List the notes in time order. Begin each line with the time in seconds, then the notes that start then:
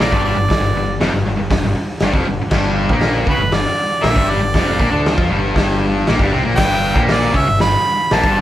0.00 A#1 A#2 A#3 D5, snare, open hi-hat
0.12 G1 G2 G3, kick
0.25 D5
0.36 G1 G2
0.48 muted distorted electric guitar stroke, muted picked electric bass stroke, kick, snare, open hi-hat
0.60 G1 G2
0.73 G1 G2
1.00 F1 F2 F3, snare, open hi-hat
1.13 G1 G2
1.24 G1 G2
1.37 G1 G2
1.50 G1 G2, kick, snare, open hi-hat
1.64 G1 G2
1.75 muted distorted electric guitar stroke, muted picked electric bass stroke
2.00 G1 G2 G3, snare, open hi-hat
2.13 F1 F2 F3, kick
2.27 G1 G2
2.41 muted distorted electric guitar stroke, muted picked electric bass stroke
2.51 G1 G2 G3, kick, snare, crash
2.89 A#1 A#2 A#3, kick
3.01 snare, open hi-hat
3.26 C#2 C#3 C#4 B4, kick
3.38 G1
3.42 G2
3.52 G1 G2 D5, snare, open hi-hat
4.01 A#1 A#2 A#3 E5, snare, open hi-hat
4.13 G1 G2 G3, kick
4.30 D5
4.40 G1 G2
4.54 F1 F2 F3, kick, snare, open hi-hat
4.79 A#1 A#2 A#3, kick
4.91 D2 D3 D4
5.06 snare, open hi-hat
5.15 F2 F3 F4, kick
5.29 G1 G2 G3
5.56 kick, snare, open hi-hat
6.07 A#1 A#2 A#3, snare, open hi-hat
6.19 G1 G2 G3, kick
6.32 C2 C3 C4
6.44 A#1 A#2 A#3
6.56 G1 G2 G3 G5, kick, snare, crash
6.94 A#1 A#2 A#3, kick
7.08 D5, snare, open hi-hat
7.33 C#2 C#3 C#4, kick
7.37 E5
7.46 G2
7.51 G1
7.60 G1 G2 B5, snare, open hi-hat
8.11 A#1 A#2 A#3 A5, snare, open hi-hat
8.23 G1 G2 G3, kick